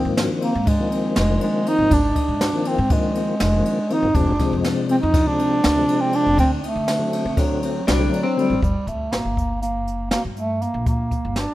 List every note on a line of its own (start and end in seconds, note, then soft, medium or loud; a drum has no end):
0.00 0.53 D#3 medium
0.00 0.54 F3 medium
0.00 0.54 A#3 medium
0.00 0.12 C4 medium
0.00 0.54 C4 loud
0.00 0.14 D#4 medium
0.05 0.24 G#2 medium
0.17 0.39 D4 medium
0.17 snare loud
0.17 ride medium
0.42 0.70 A#3 medium
0.42 0.64 C4 medium
0.42 ride medium
0.55 0.74 G#2 medium
0.66 1.17 G#3 medium
0.66 0.88 D4 medium
0.66 kick loud
0.66 ride medium
0.79 1.14 D#3 medium
0.79 1.15 F3 medium
0.79 1.15 A#3 medium
0.79 1.15 C4 medium
0.90 1.13 C4 medium
0.90 ride medium
1.15 1.36 F1 loud
1.15 1.41 G#3 medium
1.15 1.38 D4 medium
1.15 snare loud
1.15 ride medium
1.29 1.99 D#3 medium
1.29 2.00 F3 medium
1.29 2.00 A#3 medium
1.29 2.00 C4 medium
1.40 1.70 G#3 loud
1.40 1.63 D4 medium
1.40 ride medium
1.65 1.88 C4 medium
1.65 1.95 D#4 loud
1.65 ride medium
1.79 1.88 G#1 medium
1.90 2.10 G#1 medium
1.90 2.13 D4 medium
1.90 2.68 D4 medium
1.90 kick loud
1.90 ride medium
2.14 2.37 D#4 medium
2.14 kick medium
2.14 ride medium
2.28 2.47 G#2 medium
2.39 2.62 D4 medium
2.39 snare loud
2.39 ride medium
2.53 2.80 D#3 medium
2.53 2.80 F3 medium
2.53 2.80 A#3 medium
2.53 2.80 C4 medium
2.65 2.88 C4 medium
2.65 2.95 C4 medium
2.65 ride medium
2.78 2.97 G#2 loud
2.90 3.35 D#3 medium
2.90 3.35 F3 medium
2.90 3.42 G#3 medium
2.90 3.35 A#3 medium
2.90 3.35 C4 medium
2.90 3.12 D4 medium
2.90 kick loud
2.90 ride medium
3.15 3.38 C4 medium
3.15 ride medium
3.40 3.59 F1 loud
3.40 3.94 G#3 medium
3.40 3.62 D4 medium
3.40 snare loud
3.40 ride medium
3.53 3.79 D#3 medium
3.53 3.79 F3 medium
3.53 3.79 A#3 medium
3.53 3.80 C4 medium
3.66 3.88 D4 medium
3.66 ride medium
3.90 4.08 D#3 medium
3.90 4.08 F3 medium
3.90 4.08 A#3 medium
3.90 4.12 C4 medium
3.90 4.08 C4 medium
3.90 4.16 D#4 loud
3.90 ride medium
4.03 4.12 G1 medium
4.15 4.34 F1 medium
4.15 4.32 C3 medium
4.15 4.32 F3 medium
4.15 4.33 G#3 medium
4.15 4.33 C4 medium
4.15 4.63 D4 medium
4.15 4.37 D4 medium
4.15 kick medium
4.15 ride medium
4.39 5.01 C3 medium
4.39 5.01 F3 medium
4.39 5.01 G#3 medium
4.39 5.01 C4 loud
4.39 4.62 D#4 medium
4.39 kick medium
4.39 snare soft
4.39 ride medium
4.53 4.71 F2 medium
4.64 4.87 D4 medium
4.64 snare loud
4.64 ride medium
4.89 5.12 C4 medium
4.89 4.96 C4 medium
4.89 ride medium
5.02 5.21 F2 loud
5.02 5.29 D#4 medium
5.14 5.36 D4 medium
5.14 kick loud
5.14 snare soft
5.14 ride medium
5.26 5.62 C3 medium
5.26 5.62 F3 medium
5.26 5.62 G#3 medium
5.26 5.62 C4 medium
5.26 6.02 D4 loud
5.39 5.61 C4 medium
5.39 ride medium
5.64 5.83 D2 loud
5.64 5.86 D4 medium
5.64 snare loud
5.64 ride medium
5.76 6.38 C3 medium
5.76 6.38 F3 medium
5.76 6.39 G#3 medium
5.76 6.39 C4 medium
5.88 6.11 D4 medium
5.88 ride medium
6.00 6.17 C4 loud
6.13 6.36 C4 medium
6.13 6.39 D4 loud
6.13 ride medium
6.26 6.36 F1 medium
6.38 6.57 D2 loud
6.38 6.51 C4 medium
6.38 6.60 D4 medium
6.38 kick loud
6.38 ride medium
6.63 7.40 A3 medium
6.63 6.86 D#4 medium
6.63 ride medium
6.75 6.94 D3 medium
6.88 7.11 D4 medium
6.88 snare loud
6.88 ride medium
6.98 7.26 D3 medium
6.98 7.26 F#3 medium
6.98 7.26 A3 medium
6.98 7.26 C4 medium
7.13 7.36 C4 medium
7.13 ride medium
7.25 7.44 D3 medium
7.36 7.81 D3 medium
7.36 7.81 F#3 medium
7.36 7.87 F#3 medium
7.36 7.81 A3 medium
7.36 7.81 C4 medium
7.36 7.60 D4 medium
7.36 kick loud
7.36 snare soft
7.36 ride medium
7.63 7.85 C4 medium
7.63 ride medium
7.87 8.07 C2 loud
7.87 8.14 G3 medium
7.87 8.10 D4 medium
7.87 snare loud
7.87 ride medium
7.98 8.26 D3 medium
7.98 8.26 F#3 medium
7.98 8.26 A3 medium
7.98 8.26 C4 medium
8.12 8.37 F#3 medium
8.12 8.35 D4 medium
8.12 ride medium
8.23 8.59 C4 loud
8.36 8.55 D3 medium
8.36 8.55 F#3 medium
8.36 8.61 G3 medium
8.36 8.55 A3 medium
8.36 8.60 C4 medium
8.36 8.55 C4 loud
8.36 ride medium
8.50 8.59 A1 medium
8.62 8.72 G1 medium
8.62 8.89 G3 medium
8.62 kick medium
8.62 closed hi-hat medium
8.87 9.06 D2 medium
8.87 9.14 A3 medium
8.87 kick medium
8.87 closed hi-hat medium
9.12 9.21 G1 medium
9.12 9.61 A#3 medium
9.12 snare loud
9.12 closed hi-hat medium
9.25 9.75 G1 medium
9.37 kick medium
9.37 closed hi-hat medium
9.62 10.08 A#3 medium
9.62 closed hi-hat medium
9.75 10.12 F#1 medium
9.87 closed hi-hat medium
10.11 10.22 A#3 medium
10.11 snare loud
10.11 closed hi-hat medium
10.25 10.62 G2 medium
10.37 10.64 A3 medium
10.37 closed hi-hat medium
10.62 10.87 A#3 medium
10.62 closed hi-hat medium
10.74 11.12 A#1 medium
10.86 11.40 A#3 medium
10.86 kick medium
10.86 closed hi-hat medium
11.11 kick medium
11.11 closed hi-hat medium
11.25 11.43 G1 medium
11.36 11.54 D4 loud
11.36 snare loud
11.36 closed hi-hat medium